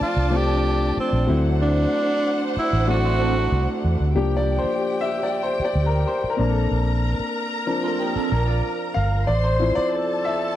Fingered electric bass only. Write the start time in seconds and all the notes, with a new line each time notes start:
0.01 muted fingered electric bass stroke
0.16 C2
0.97 muted fingered electric bass stroke
1.13 A#1
1.29 D2
2.57 muted fingered electric bass stroke
2.73 A1
3.52 C2
3.84 E2
4.00 D2
4.15 C2
4.64 muted fingered electric bass stroke
5.60 muted fingered electric bass stroke
5.75 D2
6.24 muted fingered electric bass stroke
6.39 A#1
6.71 A#1
7.19 muted fingered electric bass stroke
8.16 muted fingered electric bass stroke
8.32 A#1
8.96 G1
9.28 A1
9.77 muted fingered electric bass stroke